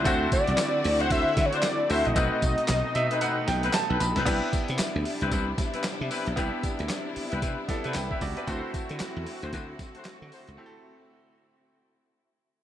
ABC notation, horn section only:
X:1
M:4/4
L:1/16
Q:"Swing 16ths" 1/4=114
K:Clyd
V:1 name="Horn section"
[DEFc]2 z4 z [DEFc] [DEFc] z2 [DEFc] z2 [DEFc] z | [C^DAB]2 z4 z [CDAB] [CDAB] z2 [CDAB] z [CDAB] z [CDAB] | [CDEB]2 z4 z [CDEB] [CDEB] z2 [CDEB] z2 [CDEB] z | [CDEB]2 z4 z [CDEB] [CDEB] z2 [CDEB] z [CDEB] z [CDEB] |
[DEFc]2 z4 z [DEFc] [DEFc] z2 [DEFc] z2 [DEFc] z | z16 |]